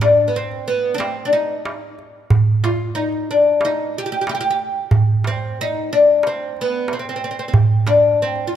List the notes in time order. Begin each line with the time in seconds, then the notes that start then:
0.01 D4, darbuka tek
0.28 B3
0.36 C4
0.51 darbuka ka
0.68 B3
0.94 C4 D4
1.00 darbuka tek
1.25 D4
1.33 D#4, darbuka ka
1.65 darbuka tek
1.98 darbuka ka
2.30 darbuka dum
2.64 F4, darbuka tek
2.95 D#4
3.12 darbuka ka
3.31 D4
3.61 darbuka tek
3.65 D#4
3.94 G4, darbuka ka
4.06 G4
4.12 G4
4.21 G4
4.27 G4, darbuka tek
4.35 G4
4.41 G4, darbuka ka
4.50 G4
4.59 darbuka ka
4.91 darbuka dum
5.24 C4, darbuka tek
5.61 D#4
5.74 darbuka ka
5.93 D4
6.23 C4, darbuka tek
6.57 darbuka ka
6.61 B3
6.88 darbuka tek
6.93 C4
6.99 C4
7.05 darbuka ka
7.09 C4
7.16 C4
7.21 C4, darbuka ka
7.31 C4
7.39 C4
7.48 C4
7.54 darbuka dum
7.87 D4, darbuka tek
8.22 C4
8.36 darbuka ka
8.47 F4
8.53 darbuka ka